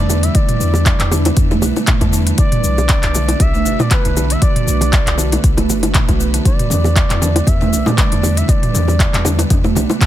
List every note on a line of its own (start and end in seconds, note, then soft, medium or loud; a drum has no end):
0.00 0.29 E2 medium
0.00 2.35 G3 medium
0.00 6.41 D4 medium
0.00 2.35 E4 medium
0.00 2.35 B4 medium
0.00 0.25 D5 loud
0.09 0.17 D3 loud
0.09 low bongo medium
0.09 shaker medium
0.23 0.34 E3 medium
0.23 0.36 E5 loud
0.23 closed hi-hat soft
0.23 shaker soft
0.35 0.48 E3 medium
0.35 1.37 D5 loud
0.35 kick loud
0.35 closed hi-hat medium
0.35 shaker medium
0.49 closed hi-hat soft
0.49 mid tom medium
0.49 shaker soft
0.60 0.93 E2 loud
0.60 shaker medium
0.74 low bongo medium
0.74 shaker soft
0.86 kick loud
0.86 clap loud
0.86 closed hi-hat medium
0.86 shaker soft
0.99 1.31 E2 medium
0.99 clap medium
0.99 closed hi-hat soft
0.99 shaker soft
1.11 1.19 D3 loud
1.11 low bongo loud
1.11 shaker medium
1.25 1.37 B3 medium
1.25 closed hi-hat soft
1.25 high bongo loud
1.25 shaker soft
1.37 1.63 E2 loud
1.37 kick loud
1.37 closed hi-hat medium
1.37 shaker medium
1.51 1.61 A3 loud
1.51 high bongo medium
1.51 low bongo medium
1.51 shaker soft
1.62 1.72 B1 medium
1.62 1.70 B2 loud
1.62 low bongo medium
1.62 shaker medium
1.76 1.87 B3 medium
1.76 high bongo medium
1.76 shaker soft
1.87 2.00 D3 medium
1.87 kick loud
1.87 clap loud
1.87 closed hi-hat medium
1.87 mid tom medium
1.87 shaker medium
2.01 2.33 E2 medium
2.01 2.12 D3 loud
2.01 kick medium
2.01 closed hi-hat soft
2.01 high bongo loud
2.01 shaker soft
2.13 2.21 D3 loud
2.13 shaker medium
2.27 2.37 E3 medium
2.27 closed hi-hat soft
2.27 shaker soft
2.38 2.51 E3 medium
2.38 6.41 A3 medium
2.38 6.41 F#4 medium
2.38 10.06 B4 medium
2.38 3.43 D5 loud
2.38 kick loud
2.38 closed hi-hat medium
2.38 shaker soft
2.52 closed hi-hat soft
2.52 mid tom loud
2.52 shaker soft
2.64 2.96 B1 loud
2.64 shaker medium
2.78 low bongo medium
2.78 shaker soft
2.89 kick loud
2.89 clap loud
2.89 closed hi-hat medium
2.89 shaker medium
3.03 3.35 B1 loud
3.03 clap medium
3.03 closed hi-hat soft
3.03 shaker soft
3.15 3.22 D3 loud
3.15 low bongo medium
3.15 shaker medium
3.28 3.39 B3 medium
3.28 closed hi-hat soft
3.28 high bongo loud
3.28 shaker soft
3.40 3.67 B1 loud
3.40 3.82 E5 loud
3.40 kick loud
3.40 closed hi-hat medium
3.40 low bongo medium
3.40 shaker medium
3.54 3.64 A3 loud
3.54 shaker soft
3.65 3.75 F#1 medium
3.65 3.73 B2 loud
3.65 shaker medium
3.79 3.90 B3 medium
3.79 3.93 D5 loud
3.79 mid tom loud
3.79 high bongo loud
3.79 shaker soft
3.91 4.04 D3 medium
3.91 4.33 B4 medium
3.91 kick loud
3.91 clap loud
3.91 closed hi-hat medium
3.91 shaker medium
4.05 4.36 B1 medium
4.05 4.15 D3 loud
4.05 closed hi-hat soft
4.05 shaker soft
4.17 4.24 D3 loud
4.17 low bongo medium
4.17 shaker medium
4.30 4.41 E3 medium
4.30 4.42 E5 loud
4.30 closed hi-hat soft
4.30 shaker soft
4.42 4.55 E3 medium
4.42 5.40 D5 loud
4.42 kick loud
4.42 closed hi-hat medium
4.42 shaker soft
4.56 closed hi-hat soft
4.56 mid tom loud
4.56 shaker soft
4.67 5.00 B1 loud
4.67 shaker medium
4.81 closed hi-hat soft
4.81 low bongo medium
4.81 shaker soft
4.93 kick loud
4.93 clap loud
4.93 closed hi-hat medium
4.93 shaker medium
5.07 5.38 B1 medium
5.07 clap medium
5.07 closed hi-hat soft
5.07 shaker soft
5.18 5.26 D3 loud
5.18 low bongo medium
5.18 shaker medium
5.32 5.43 B3 medium
5.32 closed hi-hat soft
5.32 high bongo loud
5.32 shaker soft
5.44 5.71 B1 loud
5.44 kick loud
5.44 closed hi-hat medium
5.44 shaker medium
5.57 5.68 A3 loud
5.57 closed hi-hat soft
5.57 high bongo loud
5.57 low bongo loud
5.57 shaker soft
5.69 6.01 F#1 medium
5.69 5.82 A3 medium
5.69 low bongo medium
5.69 shaker loud
5.83 5.90 D3 medium
5.83 closed hi-hat soft
5.83 high bongo loud
5.83 shaker soft
5.94 6.07 E3 medium
5.94 kick loud
5.94 clap loud
5.94 closed hi-hat medium
5.94 mid tom medium
5.94 shaker medium
6.08 6.40 B1 medium
6.08 6.19 E3 medium
6.08 kick medium
6.08 closed hi-hat soft
6.08 high bongo loud
6.08 shaker soft
6.20 6.33 B3 medium
6.20 shaker medium
6.34 6.44 D3 loud
6.34 closed hi-hat soft
6.34 shaker soft
6.45 6.58 E3 medium
6.45 10.06 G3 medium
6.45 10.06 D4 medium
6.45 8.47 E4 medium
6.45 7.49 D5 loud
6.45 kick loud
6.45 closed hi-hat medium
6.45 muted conga soft
6.45 shaker medium
6.59 closed hi-hat soft
6.59 mid tom medium
6.59 shaker soft
6.70 7.03 E2 loud
6.70 high conga loud
6.70 shaker medium
6.84 low bongo medium
6.84 muted conga soft
6.84 high conga medium
6.84 shaker soft
6.96 kick loud
6.96 clap loud
6.96 closed hi-hat medium
6.96 shaker medium
7.10 7.41 E2 medium
7.10 clap medium
7.10 closed hi-hat soft
7.10 low conga loud
7.10 shaker soft
7.22 7.29 D3 loud
7.22 low bongo medium
7.22 muted conga soft
7.22 high conga loud
7.22 shaker medium
7.36 7.47 B3 medium
7.36 closed hi-hat soft
7.36 high bongo loud
7.36 shaker soft
7.47 7.75 E2 loud
7.47 7.88 E5 loud
7.47 kick loud
7.47 closed hi-hat medium
7.47 low bongo medium
7.47 shaker medium
7.61 7.71 A3 loud
7.61 muted conga soft
7.61 low conga loud
7.61 shaker soft
7.73 7.82 B1 medium
7.73 7.80 B2 loud
7.73 high conga medium
7.73 shaker loud
7.86 7.97 B3 medium
7.86 7.97 D5 loud
7.86 mid tom medium
7.86 high bongo loud
7.86 high conga medium
7.86 low conga loud
7.86 shaker soft
7.97 8.11 D3 medium
7.97 8.38 D5 loud
7.97 kick loud
7.97 clap loud
7.97 closed hi-hat medium
7.97 muted conga medium
7.97 shaker medium
8.12 8.43 E2 medium
8.12 8.22 D3 loud
8.12 closed hi-hat soft
8.12 shaker soft
8.23 8.31 D3 loud
8.23 low bongo medium
8.23 shaker medium
8.37 8.48 E3 medium
8.37 8.50 E5 loud
8.37 closed hi-hat soft
8.37 shaker soft
8.48 8.61 E3 medium
8.48 10.06 F#4 medium
8.48 9.50 D5 loud
8.48 kick loud
8.48 closed hi-hat medium
8.48 muted conga medium
8.48 shaker medium
8.63 closed hi-hat soft
8.63 mid tom medium
8.63 shaker soft
8.74 9.06 E2 medium
8.74 high conga loud
8.74 shaker loud
8.88 low bongo loud
8.88 muted conga soft
8.88 high conga medium
8.88 shaker soft
9.00 kick loud
9.00 clap loud
9.00 closed hi-hat medium
9.00 shaker medium
9.13 9.45 E2 loud
9.13 clap medium
9.13 closed hi-hat soft
9.13 low conga loud
9.13 shaker soft
9.25 9.33 D3 loud
9.25 low bongo loud
9.25 muted conga medium
9.25 high conga loud
9.25 shaker loud
9.39 9.50 B3 medium
9.39 closed hi-hat soft
9.39 high bongo loud
9.39 shaker soft
9.50 9.77 E2 loud
9.50 kick loud
9.50 closed hi-hat medium
9.50 high conga loud
9.50 low conga loud
9.50 shaker medium
9.64 9.75 A3 loud
9.64 high bongo loud
9.64 low bongo medium
9.64 muted conga soft
9.64 shaker soft
9.75 9.85 B1 medium
9.75 9.83 B2 loud
9.75 low bongo loud
9.75 high conga medium
9.75 low conga loud
9.75 shaker loud
9.90 10.00 B3 medium
9.90 high bongo loud
9.90 shaker soft
10.01 10.06 D3 medium
10.01 kick loud
10.01 clap loud
10.01 closed hi-hat medium
10.01 mid tom medium
10.01 muted conga soft
10.01 shaker medium